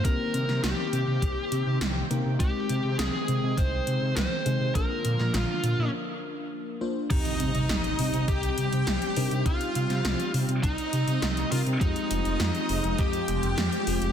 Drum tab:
CC |----------------|----------------|----------------|x---------------|
HH |x-x-x-x-x-x-x-x-|x-x-x-x-x-x-x-x-|x-x-x-x---------|xxxxxxoxxxxxxxox|
SD |---oo-------o---|----o-------o---|---oo-----------|----o-------o---|
BD |o-------o-------|o-------o-------|o---------------|o-------o-------|

CC |----------------|----------------|
HH |xxxxxxoxxxxxxxox|xxxxxxoxxxxxxxox|
SD |---oo-------o---|----o-------o---|
BD |o-------o-------|o-------o-------|